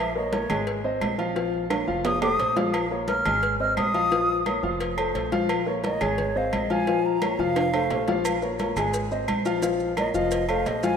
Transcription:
Already playing: upright bass A#1
0.00 flute E5
0.15 upright piano A#3 A#4 C#5, flute D#5, high conga
0.32 upright piano A#3 A#4 C#5, flute C#5, cowbell, high conga, low agogo
0.50 upright bass G#1, upright piano G#3 G#4 G#5, cowbell, high conga, low conga, low agogo, claves
0.67 cowbell, high conga
0.84 upright piano C4 C5 D#5, high conga
1.01 upright bass A#1, cowbell, high conga, low timbale, low agogo, claves
1.18 upright piano F3 F4 F5, low agogo
1.35 upright piano F3 F4 F5, cowbell, high conga
1.54 high conga
1.70 upright piano A#3 A#4 C#5, cowbell, high conga, high timbale, low agogo, claves
1.87 upright bass F1, upright piano F3 F4 F5, high conga
2.05 flute D#6, cowbell, high conga, low timbale, low agogo
2.21 upright piano A3 A4 C5, flute D#6, high conga, low timbale, low agogo, claves
2.39 upright bass A#1, upright piano A3 A4 C5, cowbell, high conga, low agogo
2.56 upright piano F3 F4 F5, cowbell, high conga, low timbale
2.73 cowbell, high conga, low agogo, claves
2.91 upright piano A#3 A#4 C#5, high conga
3.08 upright piano A#3 A#4 C#5, flute F6, cowbell, high conga, low agogo
3.25 upright bass G#1, upright piano G#3 G#4 G#5, cowbell, high conga, low conga, low agogo, claves
3.43 cowbell, high conga
3.60 upright piano C4 C5 D#5, flute F6, high conga
3.77 upright bass A#1, flute D#6, cowbell, high conga, low timbale, low agogo, claves
3.94 upright piano F3 F4 F5, low agogo
4.11 upright piano F3 F4 F5, cowbell
4.29 high conga
4.46 upright piano A#3 A#4 C#5, cowbell, high conga, low agogo, claves
4.63 upright bass F1, upright piano F3 F4 F5, high conga
4.80 cowbell, high conga, low agogo
4.97 upright piano A3 A4 C5, high conga, low agogo, claves
5.15 upright bass A#1, upright piano A3 A4 C5, cowbell, high conga, low agogo
5.32 upright piano F3 F4 F5, cowbell, high conga
5.49 cowbell, high conga, low agogo, claves
5.66 upright piano A#3 A#4 C#5, high conga
5.83 upright piano A#3 A#4 C#5, flute D#5, cowbell, high conga, low agogo
6.01 upright bass G#1, upright piano G#3 G#4 G#5, flute C#5, cowbell, high conga, low conga, low agogo, claves
6.18 cowbell, high conga, low conga
6.35 upright piano C4 C5 D#5, flute F5, high conga
6.53 upright bass A#1, flute D#5, cowbell, high conga, low agogo, claves
6.70 upright piano F3 F4 F5, flute G#5, high conga, low agogo
6.87 upright piano F3 F4 F5, cowbell, high conga
7.04 flute A#5, high conga
7.22 upright piano A#3 A#4 C#5, cowbell, high conga, low agogo, claves
7.39 upright bass F1, upright piano F3 F4 F5, flute F5, high conga
7.56 cowbell, high conga, high timbale, low agogo
7.73 upright piano A3 A4 C5, high conga, high timbale, low agogo, claves
7.90 upright bass A#1, upright piano A3 A4 C5, cowbell, high conga, low timbale, low agogo
8.08 upright piano F3 F4 F5, cowbell, high conga, low timbale
8.25 cowbell, high conga, low agogo, claves, maracas
8.42 upright piano A#3 A#4 C#5, high conga, maracas
8.59 upright piano A#3 A#4 C#5, cowbell, high conga, low agogo, maracas
8.76 upright bass G#1, upright piano G#3 G#4 G#5, cowbell, high conga, low conga, low agogo, claves, maracas
8.94 cowbell, high conga, maracas
9.11 upright piano C4 C5 D#5, high conga, maracas
9.28 upright bass A#1, cowbell, high conga, low agogo, claves, maracas
9.45 upright piano F3 F4 F5, low agogo, maracas
9.62 upright piano F3 F4 F5, cowbell, high conga, maracas
9.80 high conga, maracas
9.97 upright piano A#3 A#4 C#5, flute D#5, cowbell, high conga, low agogo, claves, maracas
10.14 upright bass F1, upright piano F3 F4 F5, flute D#5, high conga, maracas
10.31 cowbell, high conga, low agogo, maracas
10.49 upright piano A3 A4 C5, flute F5, high conga, low agogo, claves, maracas
10.66 upright bass A#1, upright piano A3 A4 C5, flute D#5, cowbell, high conga, low timbale, low agogo, maracas
10.83 upright piano F3 F4 F5, flute G#5, cowbell, high conga, maracas

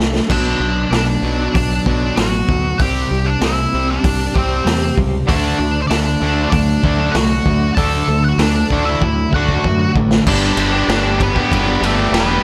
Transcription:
Already playing: fingered electric bass C2, clean electric guitar F#3 A3 D4
0.00 snare
0.15 snare
0.29 fingered electric bass B1, distorted electric guitar B2 F#3 B3, lead electric guitar D4 D5, kick, crash
0.60 fingered electric bass B1, distorted electric guitar B2 F#3
0.91 fingered electric bass B1, distorted electric guitar B2 F#3, clean electric guitar B3, lead electric guitar D5, snare, open hi-hat
0.95 lead electric guitar D4
1.22 fingered electric bass B1, distorted electric guitar B2 F#3 B3
1.54 fingered electric bass B1, distorted electric guitar B2 F#3, lead electric guitar D4 D5, kick, open hi-hat
1.86 fingered electric bass B1, distorted electric guitar B2 F#3 B3, kick
2.17 fingered electric bass A1, distorted electric guitar B2 F#3, lead electric guitar F#4 F#5, snare, open hi-hat
2.48 fingered electric bass D2, distorted electric guitar B2 F#3, kick
2.79 fingered electric bass C2, distorted electric guitar C3 G3 C4, lead electric guitar G4 G5, kick, open hi-hat
3.11 fingered electric bass C2, distorted electric guitar C3 G3
3.26 lead electric guitar D4 D5
3.41 fingered electric bass C2, distorted electric guitar C3 G3, clean electric guitar C4, lead electric guitar E4 E5, snare, open hi-hat
3.74 fingered electric bass C2, distorted electric guitar C3 G3 C4
3.90 lead electric guitar D4 D5
4.04 fingered electric bass C2, distorted electric guitar C3 G3, kick, open hi-hat
4.35 fingered electric bass C2, distorted electric guitar C3 G3 C4, lead electric guitar C4 C5, kick
4.65 fingered electric bass E2, distorted electric guitar C3 G3, snare, open hi-hat
4.97 fingered electric bass C#2, distorted electric guitar C3 G3, kick
5.28 fingered electric bass D2, distorted electric guitar D3 A3 D4, lead electric guitar D4 D5, kick, open hi-hat
5.59 fingered electric bass D2, distorted electric guitar D3 A3
5.82 lead electric guitar C5
5.87 fingered electric bass D2, distorted electric guitar D3 A3, lead electric guitar D4 D5, snare, open hi-hat
6.21 fingered electric bass D2, distorted electric guitar D3 A3 D4
6.50 fingered electric bass D2, distorted electric guitar D3 A3, clean electric guitar F#3, lead electric guitar D4 D5, kick, open hi-hat
6.83 fingered electric bass D2, distorted electric guitar D3 A3 D4, kick
7.12 fingered electric bass C2, distorted electric guitar D3 A3, clean electric guitar F#3, lead electric guitar F#5, snare, open hi-hat
7.16 lead electric guitar F#4
7.45 fingered electric bass D2, distorted electric guitar D3 A3, kick
7.75 fingered electric bass D2, distorted electric guitar D3 A3 D4, lead electric guitar A4 A5, kick, open hi-hat
8.08 fingered electric bass D2, distorted electric guitar D3 A3
8.24 lead electric guitar F#5
8.28 lead electric guitar F#4
8.38 fingered electric bass D2, distorted electric guitar D3, lead electric guitar D5, snare, open hi-hat
8.42 distorted electric guitar A3, lead electric guitar D4
8.70 fingered electric bass D2, distorted electric guitar D3 A3 D4, kick
8.85 lead electric guitar E5
8.89 lead electric guitar E4
9.01 fingered electric bass D2, distorted electric guitar D3 A3, clean electric guitar F#3, kick
9.33 fingered electric bass D2, distorted electric guitar D3 A3 D4, lead electric guitar F#4 F#5, kick
9.48 kick
9.63 fingered electric bass F#2, distorted electric guitar D3 A3, clean electric guitar F#3, kick
9.95 fingered electric bass A1, distorted electric guitar D3 A3, kick
10.11 snare
10.26 fingered electric bass G1, distorted electric guitar G3 B3 D4 G4, lead electric guitar D4 D5, kick, crash
10.57 fingered electric bass G1, distorted electric guitar G3 B3 D4 G4, ride
10.73 distorted electric guitar B3 D4 G4
10.88 fingered electric bass G1, distorted electric guitar G3 B3 D4 G4, snare, ride
11.04 distorted electric guitar B3 D4 G4
11.20 lead electric guitar B3 B4, muted overdriven electric guitar stroke, kick, ride
11.36 distorted electric guitar B3 D4 G4, kick
11.51 fingered electric bass G1, lead electric guitar B3, kick, ride
11.56 lead electric guitar B4
11.66 distorted electric guitar B3 D4 G4
11.81 fingered electric bass G1, distorted electric guitar G3 B3 D4 G4, lead electric guitar A3, ride
11.86 lead electric guitar A4
11.97 distorted electric guitar B3 D4 G4
12.12 fingered electric bass E1, distorted electric guitar G3 B3 D4 G4, lead electric guitar B3, snare, ride
12.16 lead electric guitar B4
12.29 overdriven electric guitar B3 D4 G4

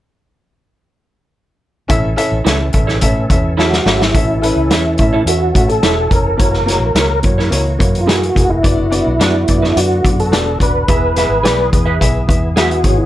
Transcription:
1.88 fingered electric bass A1, upright piano A2 C#4 E4 A4 E5, tonewheel organ E3 C#4 A4, kick, closed hi-hat
2.16 upright piano C#4 E4 A4 E5, closed hi-hat
2.32 fingered electric bass A1
2.45 fingered electric bass C#2, upright piano C#4 E4 A4 E5, clean electric guitar E4 A4 C#5, snare, closed hi-hat
2.73 fingered electric bass A1, upright piano C#4 E4 A4 E5, kick, closed hi-hat
2.87 clean electric guitar E4 A4 C#5, snare
3.01 fingered electric bass A2, upright piano C#4 E4 A4 E5, kick, closed hi-hat
3.29 fingered electric bass E2, upright piano C#4 E4 A4 E5, kick, closed hi-hat
3.57 upright piano C#4 E4 A4 E5, clean electric guitar E4 A4 C#5, tonewheel organ F#4, snare
3.73 snare
3.85 fingered electric bass G#1, upright piano C#4 E4 A4 E5, snare
4.01 tonewheel organ E4, snare
4.14 fingered electric bass A1, upright piano A2 C#4 E4 A4 E5, tonewheel organ E3 C#4 A4, kick, closed hi-hat
4.41 upright piano C#4 E4 A4 B4, closed hi-hat
4.56 fingered electric bass C#2
4.70 fingered electric bass E2, upright piano C#4 E4 A4 E5, clean electric guitar E4 A4 C#5, snare, closed hi-hat
4.98 fingered electric bass A2, upright piano C#4 E4 A4 E5, kick, closed hi-hat
5.13 clean electric guitar E4 A4 C#5
5.25 fingered electric bass E2, upright piano C#4 E4 A4 E5, tonewheel organ F#4, closed hi-hat
5.54 fingered electric bass A2, upright piano C#4 E4 A4 E5, kick, closed hi-hat
5.69 tonewheel organ A4, closed hi-hat
5.82 fingered electric bass E1, upright piano C#4 E4 A4 E5, clean electric guitar E4 A4 C#5, snare, closed hi-hat
6.11 fingered electric bass F1, upright piano C#4 E4 A4 C#5, tonewheel organ A#4, kick, closed hi-hat
6.37 fingered electric bass F#1, upright piano A#3 E4 F#4 C#5, tonewheel organ A#3 F#4, kick, closed hi-hat
6.54 snare
6.66 upright piano A#3 E4 F#4 C#5, snare, closed hi-hat
6.80 fingered electric bass A#1
6.95 fingered electric bass C#2, upright piano A#3 E4 F#4 C#5, clean electric guitar E4 A#4 C#5, snare, closed hi-hat
7.23 fingered electric bass F#2, upright piano A#3 E4 F#4 C#5, kick, closed hi-hat
7.38 clean electric guitar E4 A#4 C#5, snare
7.50 fingered electric bass C#2, upright piano A#3 E4 F#4 C#5, closed hi-hat
7.79 fingered electric bass F#2, upright piano A#3 E4 F#4 C#5, kick, closed hi-hat
7.95 closed hi-hat
8.01 tonewheel organ F4
8.06 upright piano A#3 E4 F#4 G#4, clean electric guitar E4 A#4 C#5, tonewheel organ F#4, snare, closed hi-hat
8.23 closed hi-hat
8.35 fingered electric bass F1, upright piano A#3 E4 F#4 G#4, kick, closed hi-hat
8.50 tonewheel organ E4
8.63 fingered electric bass F#1, tonewheel organ D3 B3, upright piano B3 D4 F#4 D5, kick, closed hi-hat
8.90 upright piano B3 D4 F#4 D5, closed hi-hat
9.07 fingered electric bass B1
9.20 fingered electric bass F#2, upright piano B3 D4 F#4 D5, clean electric guitar D4 F#4 B4, snare, closed hi-hat
9.48 fingered electric bass F#2, upright piano B3 D4 F#4 D5, kick, closed hi-hat
9.62 clean electric guitar D4 F#4 B4, snare
9.76 fingered electric bass F#2, upright piano B3 D4 F#4 D5, tonewheel organ F#4, closed hi-hat
10.04 fingered electric bass F#2, upright piano B3 D4 F#4 D5, kick, closed hi-hat
10.20 tonewheel organ A4, closed hi-hat
10.32 fingered electric bass E1, upright piano B3 D4 F#4 D5, clean electric guitar D4 F#4 B4, snare, closed hi-hat
10.60 fingered electric bass D#1, upright piano B3 D4 F#4 D5, tonewheel organ B4, kick, closed hi-hat
10.88 fingered electric bass E1, upright piano E3 B3 E4 G#4 E5, tonewheel organ E3 G#4, kick, closed hi-hat
11.16 upright piano B3 E4 G#4 E5, snare, closed hi-hat
11.29 fingered electric bass G#1
11.43 fingered electric bass B1, upright piano B3 E4 G#4 D5, clean electric guitar G#4 B4 E5, snare, closed hi-hat
11.72 fingered electric bass E2, upright piano B3 E4 G#4 B4, kick, closed hi-hat
11.86 clean electric guitar G#4 B4 E5
11.99 fingered electric bass B1, upright piano B3 E4 G#4 E5, kick, closed hi-hat
12.27 fingered electric bass E2, upright piano B3 E4 G#4 E5, kick, closed hi-hat
12.56 upright piano B3 E4 G#4 E5, tonewheel organ F#4, clean electric guitar G#4 B4 E5, snare, closed hi-hat
12.71 closed hi-hat
12.84 fingered electric bass G#1, upright piano B3 E4 G#4 C#5, kick, closed hi-hat
12.98 tonewheel organ E4

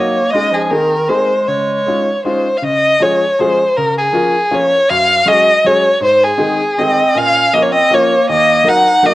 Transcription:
Already playing: upright piano F#3 A#3 D#4, clarinet A#3, violin C#5
0.00 upright piano F#4
0.30 clarinet G#3, violin D#5
0.34 upright piano G#3 C#4 D#4 G#4
0.51 clarinet F3, violin G#4
0.70 clarinet D#3, upright piano A#3 C4 D#4 G#4, violin A#4
1.08 clarinet G#3, upright piano A#3 C4 D#4 G#4, violin C5
1.47 upright piano C#3, clarinet G#3, violin C#5
1.86 upright piano G#3 C#4 D#4 F4
2.25 upright piano G#3 C#4 D#4 F4, violin C5
2.57 violin F5
2.62 upright piano C#3, violin D#5
3.00 upright piano F3 G#3 C#4 F4 G#4, violin C#5
3.39 upright piano F3 G#3 C#4 F4 G#4, violin C5
3.77 upright piano C#3, violin A#4
3.98 violin G#4
4.13 upright piano F3 A#3 C#4 F4 A#4
4.51 upright piano F3 A#3 C#4 F4 A#4, violin C#5
4.89 upright piano F#2, violin F5
5.25 upright piano F#3 G#3 C#4 F#4 G#4, violin D#5
5.64 upright piano F#3 G#3 C#4 F#4 G#4, violin C#5
6.01 upright piano G#2, violin C5
6.23 violin G#4
6.38 upright piano D#3 G#3 C4 D#4 G#4
6.78 upright piano D#3 G#3 C4 D#4 G#4, clarinet C4, violin D#5
7.15 upright piano A#2, clarinet C#4, violin F5
7.53 upright piano F3 A#3 C#4 F4 A#4, clarinet A#3, violin D#5
7.60 clarinet A#3, violin C#5
7.71 clarinet C4, violin D#5
7.90 upright piano F3 A#3 C#4 F4 A#4, clarinet A#3
7.94 violin C#5
8.29 upright piano D#2, clarinet A#3, violin D#5
8.64 upright piano F#3 A#3 D#4 F#4 A#4
8.68 clarinet D#4, violin F#5
9.03 upright piano F#3 A#3 D#4 F#4 A#4, clarinet A#3, violin D#5

